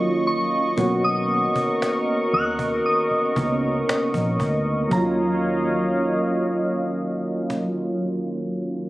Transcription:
0.00 0.77 D#3 medium
0.00 0.74 F#3 medium
0.00 0.77 F#3 soft
0.00 0.76 A#3 soft
0.00 0.78 C#4 medium
0.00 0.78 F4 medium
0.00 4.88 D#5 medium
0.00 4.88 C#6 medium
0.27 1.06 C#6 medium
0.76 1.46 B1 loud
0.76 0.83 D3 medium
0.76 3.32 A#3 medium
0.76 3.32 B3 medium
0.76 3.33 C#4 medium
0.76 3.33 F#4 medium
0.76 4.87 A#4 medium
0.76 cajon bass loud
0.83 3.35 D#3 medium
1.04 2.37 D#6 medium
1.56 cajon bass medium
1.82 cajon slap medium
2.33 2.79 D#2 medium
2.33 2.48 F#6 medium
2.59 cajon bass medium
2.86 4.36 D#6 medium
3.11 muted fingered electric bass stroke soft
3.36 3.82 C#2 medium
3.36 4.91 C#3 soft
3.36 4.90 A#3 soft
3.36 4.91 B3 soft
3.36 4.92 C#4 soft
3.36 4.92 D#4 medium
3.36 cajon bass medium
3.89 cajon slap loud
4.14 4.37 A#1 medium
4.14 cajon bass medium
4.40 4.85 D2 medium
4.40 cajon bass medium
4.88 7.97 D#2 medium
4.88 7.93 D#3 medium
4.88 7.95 F#3 medium
4.88 7.97 A#3 medium
4.88 7.96 C#5 medium
4.88 7.96 D#5 medium
4.88 7.96 F5 medium
4.88 cajon bass medium
4.93 7.99 C#4 medium
4.93 8.00 F4 medium
4.93 7.98 A#5 medium
7.50 cajon slap medium

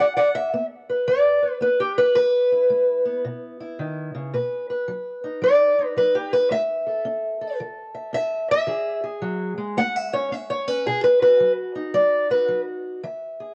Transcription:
0.00 0.49 E3 medium
0.00 0.16 F#5 loud
0.16 0.28 D5 medium
0.16 0.35 F#5 medium
0.35 0.65 E5 loud
0.53 1.04 B3 medium
0.89 1.42 B4 soft
1.07 1.58 E3 medium
1.07 1.62 D5 medium
1.42 1.61 B4 soft
1.61 1.79 B3 medium
1.61 1.80 B4 medium
1.80 1.98 G4 medium
1.98 2.14 B4 loud
2.15 2.66 E3 medium
2.15 3.24 B4 loud
2.52 3.59 E4 medium
2.70 3.21 G#3 medium
3.05 5.23 B3 soft
3.25 3.75 B2 medium
3.60 4.31 E4 soft
3.79 4.14 D#3 medium
4.15 4.34 C#3 medium
4.34 4.84 B2 medium
4.34 4.69 B4 medium
4.70 5.43 B4 medium
4.88 5.38 F#3 medium
5.24 5.77 D#4 soft
5.42 5.92 F#3 medium
5.42 5.87 D5 loud
5.79 6.49 D#4 soft
5.87 5.97 B4 loud
5.96 6.47 F#3 medium
5.96 6.15 B4 medium
6.15 6.33 G4 medium
6.33 6.51 B4 loud
6.51 7.01 A3 medium
6.51 7.60 E5 loud
6.87 7.40 A4 soft
7.05 7.55 C#4 medium
7.41 8.66 A4 soft
7.60 8.10 E3 medium
7.95 8.13 E5 soft
8.13 8.64 C#4 medium
8.13 8.50 E5 loud
8.51 9.05 E5 loud
8.67 9.18 E3 medium
8.67 9.02 G#4 medium
9.04 9.74 G#4 medium
9.22 9.57 F#3 medium
9.58 9.76 G#3 medium
9.77 10.27 A3 loud
9.77 9.96 F#5 loud
9.96 10.13 E5 loud
10.13 10.30 C#4 soft
10.13 10.31 C#5 loud
10.32 10.66 C#4 medium
10.32 10.50 E5 loud
10.50 10.68 C#5 loud
10.67 10.83 C#4 medium
10.67 10.85 B4 loud
10.86 11.36 B2 medium
10.86 11.03 G#4 loud
11.04 11.21 B4 loud
11.22 12.29 F#4 medium
11.22 11.51 B4 loud
11.40 11.90 F#3 medium
11.76 13.00 D#4 medium
11.94 12.44 F#3 medium
11.94 12.30 D5 loud
12.30 13.00 F#4 soft
12.30 12.60 B4 loud
12.48 12.99 F#3 medium
13.03 13.53 E3 medium
13.03 13.54 E5 soft
13.40 13.54 G#4 soft

